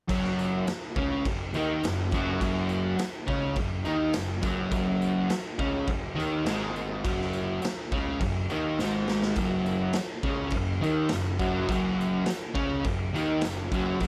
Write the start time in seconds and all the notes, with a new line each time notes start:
0.08 F#1 F#2 F#3, kick, tambourine, crash
0.24 snare
0.39 tambourine
0.67 muted picked electric bass stroke, muted distorted electric guitar stroke, snare, tambourine, crash
0.96 C#2 C#3 C#4, kick
1.25 F#1 F#2, kick, tambourine, crash
1.53 D#2 D#3 D#4, tambourine
1.83 F#1 F#2, snare, tambourine, crash
2.11 F#1 F#2 F#3, kick, tambourine
2.41 F#1 F#2 F#3, kick, tambourine, crash
2.69 tambourine
2.97 muted picked electric bass stroke, muted distorted electric guitar stroke, snare, tambourine, crash
3.27 C#2 C#3 C#4, kick
3.56 F#1 F#2, kick, tambourine, crash
3.84 D#2 D#3 D#4, tambourine
4.13 F#1 F#2, snare, tambourine, crash
4.42 F#1 F#2 F#3, kick, tambourine
4.71 F#1 F#2 F#3, kick, tambourine, crash
5.02 tambourine
5.29 muted distorted electric guitar stroke, muted picked electric bass stroke, snare, tambourine, crash
5.59 C#2 C#3 C#4, kick
5.87 F#1 F#2, kick, tambourine, crash
6.16 D#2 D#3 D#4, tambourine
6.45 G#1 G#2 G#3, snare, tambourine, crash
6.76 tambourine
7.04 F#1 F#2 F#3, kick, tambourine, crash
7.21 snare
7.33 tambourine
7.62 muted picked electric bass stroke, muted distorted electric guitar stroke, snare, tambourine, crash
7.92 C#2 C#3 C#4, kick, tambourine
8.20 F#1 F#2, kick, tambourine, crash
8.50 D#2 D#3 D#4, tambourine
8.79 G#1 G#2 G#3, snare, tambourine
9.08 snare, tambourine
9.22 snare
9.35 F#1 F#2 F#3, kick, tambourine, crash
9.66 tambourine
9.93 muted picked electric bass stroke, muted distorted electric guitar stroke, snare, tambourine, crash
10.23 C#2 C#3 C#4, kick
10.50 F#1 F#2, kick, crash
10.55 tambourine
10.81 D#2 D#3 D#4, tambourine
11.09 F#1 F#2, snare, crash
11.13 tambourine
11.39 F#1 F#2 F#3, kick, tambourine
11.68 F#1 F#2 F#3, kick, tambourine, crash
12.01 tambourine
12.26 muted distorted electric guitar stroke, muted picked electric bass stroke, snare, crash
12.30 tambourine
12.54 C#2 C#3 C#4, kick
12.84 F#1 F#2, kick, tambourine, crash
13.13 D#2 D#3 D#4, tambourine
13.41 F#1 F#2, snare, tambourine, crash
13.72 F#1 F#2 F#3, kick, tambourine
14.00 F#1 F#2 F#3, kick, tambourine, crash